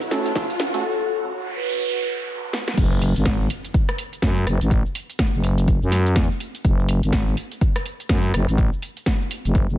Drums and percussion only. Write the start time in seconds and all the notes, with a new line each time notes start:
0.01 open hi-hat, cabasa
0.11 snare, open hi-hat, cabasa
0.26 closed hi-hat, cabasa
0.35 kick, snare, closed hi-hat, cabasa
0.50 closed hi-hat, cabasa
0.60 snare, open hi-hat, cabasa
0.74 closed hi-hat, cabasa
2.53 snare
2.68 snare
2.77 kick, closed hi-hat, crash, cabasa
2.92 cabasa
3.02 open hi-hat
3.16 closed hi-hat, cabasa
3.26 kick, snare, closed hi-hat, cabasa
3.41 cabasa
3.50 open hi-hat
3.65 closed hi-hat, cabasa
3.74 kick, closed hi-hat, cabasa
3.89 cross-stick, open hi-hat, cabasa
3.98 open hi-hat
4.13 closed hi-hat, cabasa
4.22 kick, snare, closed hi-hat, cabasa
4.37 cabasa
4.47 cross-stick, open hi-hat
4.61 closed hi-hat, cabasa
4.71 kick, closed hi-hat, cabasa
4.86 cabasa
4.95 open hi-hat
5.10 closed hi-hat, cabasa
5.19 kick, snare, closed hi-hat, cabasa
5.34 cabasa
5.44 open hi-hat
5.58 closed hi-hat, cabasa
5.68 kick, closed hi-hat, cabasa
5.83 cabasa
5.92 snare, open hi-hat
6.06 closed hi-hat, cabasa
6.16 kick, snare, closed hi-hat, cabasa
6.31 cabasa
6.40 open hi-hat
6.55 closed hi-hat, cabasa
6.65 kick, closed hi-hat, cabasa
6.79 cabasa
6.89 open hi-hat
7.03 closed hi-hat, cabasa
7.13 kick, snare, closed hi-hat, cabasa
7.28 cabasa
7.37 open hi-hat
7.52 closed hi-hat, cabasa
7.61 kick, closed hi-hat, cabasa
7.76 cross-stick, open hi-hat, cabasa
7.86 open hi-hat
8.00 closed hi-hat, cabasa
8.09 kick, snare, closed hi-hat, cabasa
8.25 cabasa
8.34 cross-stick, open hi-hat
8.48 closed hi-hat, cabasa
8.58 kick, closed hi-hat, cabasa
8.73 cabasa
8.82 open hi-hat
8.97 closed hi-hat, cabasa
9.06 kick, snare, closed hi-hat, cabasa
9.21 cabasa
9.31 open hi-hat
9.45 closed hi-hat, cabasa
9.55 kick, closed hi-hat, cabasa
9.70 cabasa